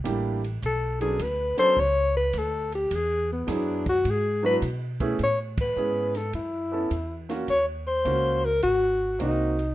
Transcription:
0.04 upright bass A1, grand piano G3 A#3 D4 E4 G4, kick, hi-hat pedal, ride
0.44 ride
0.62 upright bass B1, alto saxophone A4, kick, ride
1.00 grand piano F#3 B3 C#4 D4 A4, alto saxophone G#4, ride
1.19 upright bass D2, alto saxophone B4, kick, hi-hat pedal, ride
1.57 grand piano F#3 B3 C#4 D4 A4, alto saxophone C5, muted upright bass stroke, snare, ride
1.77 upright bass C#2, alto saxophone C#5, kick
2.16 alto saxophone B4
2.33 upright bass D2, kick, hi-hat pedal, ride
2.38 alto saxophone A4
2.72 alto saxophone G4, ride
2.91 upright bass E2, alto saxophone G#4, kick, ride
3.32 alto saxophone B3
3.47 upright bass F#2, grand piano F#3 B3 D4 E4 G#4, kick, snare, hi-hat pedal, ride
3.53 alto saxophone D4
3.86 alto saxophone F#4, kick, ride
4.05 upright bass G#2, kick, ride
4.10 alto saxophone G#4
4.43 grand piano F#3 B3 D4 E4 F#4, alto saxophone B4
4.62 upright bass B2, kick, hi-hat pedal, ride
5.00 grand piano A3 B3 C#4 E4 G#4, kick, ride
5.19 upright bass A2, kick, ride
5.23 alto saxophone C#5
5.58 alto saxophone B4, kick, ride
5.76 upright bass G#2, grand piano B3 C#4 E4 G#4, hi-hat pedal
6.15 alto saxophone A4, snare, ride
6.33 upright bass F#2, alto saxophone E4, kick, ride
6.72 grand piano B3 C#4 E4 A4
6.90 upright bass E2, kick, hi-hat pedal, ride
7.29 grand piano A#3 C#4 F4 F#4, snare, ride
7.48 upright bass D#2, alto saxophone C#5, kick, ride
7.87 alto saxophone C5
8.05 upright bass C#2, grand piano A#3 C#4 F4 F#4, kick, hi-hat pedal, ride
8.45 alto saxophone A#4
8.62 upright bass G#1, alto saxophone F#4, kick, ride
9.19 upright bass C2, grand piano A#3 C4 D#4 F#4, alto saxophone D#4, kick, hi-hat pedal, ride
9.59 ride

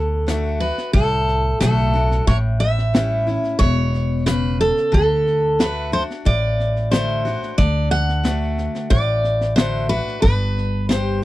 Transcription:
Already playing: upright bass D2, steel-string acoustic guitar D3 A4
0.27 steel-string acoustic guitar D3 A3 D4 F#4, snare, hi-hat pedal
0.60 steel-string acoustic guitar D4 F#4 B4, snare
0.78 snare
0.93 upright bass C2, steel-string acoustic guitar A2 A4, kick, snare
1.28 snare
1.61 upright bass B1, steel-string acoustic guitar D3 A3 D4 F#4 A4, snare, hi-hat pedal
1.93 steel-string acoustic guitar D4 F#4, snare
2.11 snare
2.27 upright bass A1, steel-string acoustic guitar A2 C#5, kick, snare
2.60 steel-string acoustic guitar E5, snare
2.78 snare
2.94 steel-string acoustic guitar E3 G3 C#4 E4, snare, hi-hat pedal
3.27 steel-string acoustic guitar C#4 E4, snare
3.44 snare
3.59 upright bass E1, steel-string acoustic guitar B2 C#5, kick, snare
3.94 snare
4.26 steel-string acoustic guitar C#3 B4, snare, hi-hat pedal
4.61 steel-string acoustic guitar A4, snare
4.77 snare
4.92 upright bass D2, steel-string acoustic guitar D3 A4, kick, snare
5.27 snare
5.59 steel-string acoustic guitar D3 A3 D4 F#4 B4, snare, hi-hat pedal
5.92 steel-string acoustic guitar D4 F#4 C5, snare
6.10 snare
6.25 upright bass A1, steel-string acoustic guitar A2 D5, kick, snare
6.60 snare
6.76 snare
6.91 steel-string acoustic guitar D3 A3 D4 F#4 C5, snare, hi-hat pedal
7.25 steel-string acoustic guitar D4 F#4, snare
7.43 snare
7.58 upright bass D2, steel-string acoustic guitar D3 D5, kick, snare
7.91 steel-string acoustic guitar F#5, snare
8.09 snare
8.24 steel-string acoustic guitar D3 A3 D4 F#4, snare, hi-hat pedal
8.58 snare
8.75 snare
8.90 upright bass A1, steel-string acoustic guitar A2 D5, kick, snare
9.24 snare
9.41 snare
9.56 steel-string acoustic guitar D3 A3 D4 F#4 C5, snare, hi-hat pedal
9.89 steel-string acoustic guitar D4 F#4 B4, snare
10.08 snare
10.22 upright bass G1, steel-string acoustic guitar G2 B4, kick, snare
10.58 snare
10.89 steel-string acoustic guitar G3 D4 G4 C5, snare, hi-hat pedal

